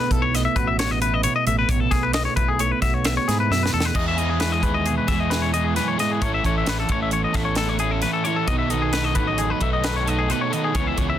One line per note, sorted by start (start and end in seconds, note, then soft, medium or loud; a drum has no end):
0.00 1.21 B2 medium
0.00 0.59 E3 medium
0.00 0.34 A3 medium
0.00 0.80 B3 medium
0.00 0.11 B4 medium
0.11 0.46 B1 medium
0.11 0.56 E4 medium
0.11 0.23 A4 medium
0.11 kick medium
0.11 closed hi-hat medium
0.22 0.35 C#5 medium
0.34 1.45 A3 medium
0.34 0.45 D#5 medium
0.34 snare soft
0.34 closed hi-hat loud
0.45 0.57 E5 medium
0.56 1.26 A1 medium
0.56 1.01 F#4 medium
0.56 0.68 B4 medium
0.56 kick medium
0.56 closed hi-hat medium
0.67 0.79 E5 medium
0.79 2.13 B3 medium
0.79 0.91 C#5 medium
0.79 snare loud
0.79 closed hi-hat loud
0.91 1.01 D#5 medium
1.02 2.35 E4 medium
1.02 1.14 B4 medium
1.02 closed hi-hat medium
1.14 1.23 D#5 medium
1.22 1.66 B2 medium
1.22 1.35 C#5 medium
1.22 closed hi-hat medium
1.36 1.47 D#5 medium
1.47 1.64 A1 medium
1.47 1.67 A3 medium
1.47 1.58 E5 medium
1.47 closed hi-hat medium
1.59 1.69 B4 medium
1.68 1.87 A1 loud
1.68 3.49 B2 medium
1.68 1.80 C#5 medium
1.68 kick loud
1.68 closed hi-hat medium
1.80 1.92 A4 medium
1.91 2.26 B1 medium
1.91 2.58 A3 medium
1.91 2.03 G#4 medium
1.91 kick medium
1.91 snare soft
1.91 closed hi-hat medium
2.03 2.13 B4 medium
2.13 3.04 B3 medium
2.13 2.25 D#5 medium
2.13 snare loud
2.13 closed hi-hat medium
2.25 2.36 C#5 medium
2.36 2.72 B1 medium
2.36 2.81 E4 medium
2.36 2.48 B4 medium
2.36 kick medium
2.36 closed hi-hat medium
2.48 2.60 G#4 medium
2.59 3.71 A3 medium
2.59 2.71 C#5 medium
2.59 closed hi-hat medium
2.71 2.82 B4 medium
2.81 3.17 B1 medium
2.81 3.27 F#4 medium
2.81 2.94 E5 medium
2.81 kick medium
2.81 snare soft
2.81 closed hi-hat medium
2.94 3.05 C#5 medium
3.04 6.22 B3 medium
3.04 3.16 E5 medium
3.04 snare loud
3.04 closed hi-hat medium
3.17 3.28 C#5 medium
3.28 3.48 G#2 medium
3.28 6.22 E4 medium
3.28 3.39 G#4 medium
3.28 snare soft
3.28 closed hi-hat medium
3.40 3.51 B4 medium
3.50 3.71 F#2 medium
3.50 3.93 B2 medium
3.50 3.62 E5 medium
3.50 snare medium
3.63 3.73 B4 medium
3.63 snare medium
3.73 3.94 E2 medium
3.73 3.93 A3 medium
3.73 3.85 A4 medium
3.80 snare loud
3.85 3.96 B4 medium
3.95 4.63 E2 medium
3.95 4.18 E3 medium
3.95 4.18 G#3 medium
3.95 4.16 B3 medium
3.95 4.17 E4 medium
3.95 4.16 G#4 medium
3.95 4.07 D#5 medium
3.95 kick medium
3.95 crash medium
4.08 4.19 E5 medium
4.16 5.75 E3 medium
4.16 4.38 G#3 medium
4.16 4.39 B3 medium
4.16 4.40 E4 medium
4.16 4.41 G#4 medium
4.16 4.30 D#5 medium
4.16 closed hi-hat medium
4.30 4.41 G#4 medium
4.39 5.31 G#3 medium
4.39 5.10 G#3 medium
4.39 4.64 B3 medium
4.39 4.63 E4 medium
4.39 4.61 G#4 medium
4.39 4.52 B4 medium
4.39 snare loud
4.39 closed hi-hat medium
4.52 4.63 D#5 medium
4.62 4.98 D#2 medium
4.62 5.08 B3 medium
4.62 5.07 E4 medium
4.62 5.06 G#4 medium
4.62 4.74 B4 medium
4.62 kick medium
4.62 closed hi-hat medium
4.74 4.86 D#5 medium
4.86 6.19 B2 medium
4.86 4.97 G#4 medium
4.86 closed hi-hat medium
4.98 5.09 B4 medium
5.07 5.78 E2 medium
5.07 5.55 G#3 medium
5.07 5.31 B3 medium
5.07 5.31 E4 medium
5.07 5.32 G#4 medium
5.07 5.20 E5 medium
5.07 kick medium
5.07 snare soft
5.07 closed hi-hat medium
5.20 5.31 D#5 medium
5.30 5.75 G#3 medium
5.30 5.54 B3 medium
5.30 5.53 E4 medium
5.30 5.52 G#4 medium
5.30 5.42 B4 medium
5.30 snare loud
5.30 closed hi-hat medium
5.42 5.53 C#5 medium
5.53 6.20 G#3 medium
5.53 5.75 B3 medium
5.53 5.76 E4 medium
5.53 5.76 G#4 medium
5.53 5.65 D#5 medium
5.53 closed hi-hat medium
5.64 5.76 G#4 medium
5.75 6.00 F#2 medium
5.75 5.99 E3 medium
5.75 5.98 G#3 medium
5.75 5.98 B3 medium
5.75 5.98 E4 medium
5.75 5.96 G#4 medium
5.75 5.88 B4 medium
5.75 snare soft
5.75 closed hi-hat medium
5.88 5.99 C#5 medium
5.98 6.23 G#2 medium
5.98 6.19 E3 medium
5.98 6.20 G#3 medium
5.98 6.20 B3 medium
5.98 6.20 E4 medium
5.98 6.20 G#4 medium
5.98 6.11 D#5 medium
5.98 snare soft
5.98 closed hi-hat medium
6.12 6.22 G#4 medium
6.20 6.39 A1 medium
6.20 6.45 A2 medium
6.20 7.13 A2 medium
6.20 6.45 E3 medium
6.20 6.44 A3 medium
6.20 6.44 C#4 medium
6.20 6.43 E4 medium
6.20 6.44 A4 medium
6.20 6.33 C#5 medium
6.20 kick loud
6.20 closed hi-hat medium
6.24 6.44 E3 medium
6.24 6.89 C#4 medium
6.34 6.45 E5 medium
6.44 6.62 A1 medium
6.44 6.90 A2 medium
6.44 8.25 E3 medium
6.44 6.90 E3 medium
6.44 6.66 A3 medium
6.44 6.65 C#4 medium
6.44 6.67 E4 medium
6.44 6.68 A4 medium
6.44 6.57 C#5 medium
6.44 kick medium
6.44 closed hi-hat medium
6.58 6.68 E5 medium
6.66 6.84 A1 medium
6.66 6.91 A3 medium
6.66 6.89 C#4 medium
6.66 6.89 E4 medium
6.66 6.89 A4 medium
6.66 6.79 B4 medium
6.66 snare loud
6.66 closed hi-hat medium
6.80 6.90 A4 medium
6.89 7.24 A1 medium
6.89 7.33 A3 medium
6.89 7.57 C#4 medium
6.89 7.33 C#4 medium
6.89 7.32 E4 medium
6.89 7.32 A4 medium
6.89 7.02 C#5 medium
6.89 kick medium
6.89 closed hi-hat medium
7.02 7.13 E5 medium
7.11 8.03 E2 medium
7.11 7.24 C#5 medium
7.11 closed hi-hat medium
7.24 7.35 D#5 medium
7.33 8.04 A1 medium
7.33 7.55 A3 medium
7.33 7.56 C#4 medium
7.33 7.56 E4 medium
7.33 7.57 A4 medium
7.33 7.45 E5 medium
7.33 kick medium
7.33 snare soft
7.33 closed hi-hat medium
7.45 7.57 C#5 medium
7.55 7.80 A3 medium
7.55 7.69 B3 medium
7.55 7.80 C#4 medium
7.55 7.79 E4 medium
7.55 7.69 A4 medium
7.55 7.78 A4 medium
7.55 snare loud
7.55 closed hi-hat medium
7.69 8.48 C#4 soft
7.69 7.79 C#5 medium
7.79 8.03 A3 medium
7.79 8.03 C#4 medium
7.79 8.04 E4 medium
7.79 7.91 G#4 medium
7.79 8.04 A4 medium
7.79 closed hi-hat medium
7.91 8.02 A4 medium
8.02 8.26 A2 medium
8.02 8.49 A2 medium
8.02 8.25 E3 medium
8.02 8.25 A3 medium
8.02 8.24 C#4 medium
8.02 8.24 E4 medium
8.02 8.23 A4 medium
8.02 8.13 B4 medium
8.02 snare soft
8.02 closed hi-hat medium
8.13 8.24 A4 medium
8.24 8.48 A2 medium
8.24 8.47 E3 medium
8.24 8.46 E3 medium
8.24 8.47 A3 medium
8.24 8.47 C#4 medium
8.24 8.47 E4 medium
8.24 8.46 A4 medium
8.24 8.36 C#5 medium
8.24 closed hi-hat medium
8.36 8.48 A4 medium
8.48 9.16 B1 medium
8.48 8.71 B2 medium
8.48 8.72 B2 medium
8.48 8.70 D#3 medium
8.48 8.70 F#3 medium
8.48 8.70 B3 medium
8.48 8.69 D#4 medium
8.48 8.69 A4 loud
8.48 8.58 D#5 medium
8.48 kick medium
8.48 closed hi-hat medium
8.59 8.70 E5 medium
8.70 9.17 B2 medium
8.70 10.52 D#3 medium
8.70 9.17 D#3 medium
8.70 8.91 F#3 medium
8.70 8.93 B3 medium
8.70 8.93 D#4 medium
8.70 8.93 A4 medium
8.70 8.82 D#5 medium
8.70 closed hi-hat medium
8.82 8.93 G#4 medium
8.92 9.15 F#3 medium
8.92 9.61 A3 medium
8.92 9.15 B3 medium
8.92 9.15 D#4 medium
8.92 9.13 A4 medium
8.92 9.04 B4 medium
8.92 snare loud
8.92 closed hi-hat medium
9.04 9.16 D#5 medium
9.15 9.51 A1 medium
9.15 9.61 F#3 medium
9.15 9.61 B3 medium
9.15 9.59 D#4 medium
9.15 9.83 D#4 medium
9.15 9.59 A4 medium
9.15 9.27 B4 medium
9.15 kick medium
9.15 closed hi-hat medium
9.27 9.39 D#5 medium
9.38 10.30 F#2 medium
9.38 9.50 G#4 medium
9.38 closed hi-hat medium
9.50 9.62 B4 medium
9.61 10.31 B1 medium
9.61 9.81 F#3 medium
9.61 10.07 A3 medium
9.61 9.83 B3 medium
9.61 9.83 D#4 medium
9.61 9.84 A4 medium
9.61 9.73 E5 medium
9.61 kick medium
9.61 closed hi-hat medium
9.73 9.84 D#5 medium
9.83 10.07 F#3 medium
9.83 10.07 B3 medium
9.83 10.72 D#4 medium
9.83 10.06 D#4 medium
9.83 10.05 A4 medium
9.83 9.96 B4 medium
9.83 snare loud
9.83 closed hi-hat medium
9.96 10.08 C#5 medium
10.06 10.28 F#3 medium
10.06 10.73 A3 soft
10.06 10.29 B3 medium
10.06 10.29 D#4 medium
10.06 10.30 A4 medium
10.06 10.19 D#5 medium
10.06 closed hi-hat medium
10.19 10.30 G#4 medium
10.28 10.51 B2 medium
10.28 10.53 B2 medium
10.28 10.51 D#3 loud
10.28 10.51 F#3 medium
10.28 10.51 B3 medium
10.28 10.49 D#4 medium
10.28 10.49 A4 loud
10.28 10.41 B4 medium
10.28 closed hi-hat medium
10.41 10.52 C#5 medium
10.50 10.74 B2 medium
10.50 10.73 D#3 medium
10.50 10.73 F#3 medium
10.50 10.75 B3 medium
10.50 10.73 D#4 medium
10.50 10.73 A4 medium
10.50 10.64 D#5 medium
10.50 closed hi-hat medium
10.64 10.75 G#4 medium
10.74 10.93 C#2 medium
10.74 10.97 C#3 medium
10.74 10.98 C#3 medium
10.74 10.97 E3 medium
10.74 10.97 G#3 medium
10.74 11.19 B3 medium
10.74 10.96 C#4 medium
10.74 10.97 E4 medium
10.74 10.96 G#4 medium
10.74 10.87 C#5 medium
10.74 kick medium
10.74 closed hi-hat medium
10.78 11.19 C#4 medium
10.78 11.19 E4 medium
10.87 10.98 E5 medium
10.97 11.15 C#2 medium
10.97 11.19 C#3 medium
10.97 11.19 E3 medium
10.97 11.19 G#3 medium
10.97 11.18 C#4 medium
10.97 11.19 E4 medium
10.97 11.19 G#4 medium
10.97 11.09 C#5 medium
10.97 kick medium
10.97 closed hi-hat medium
11.10 11.19 E5 medium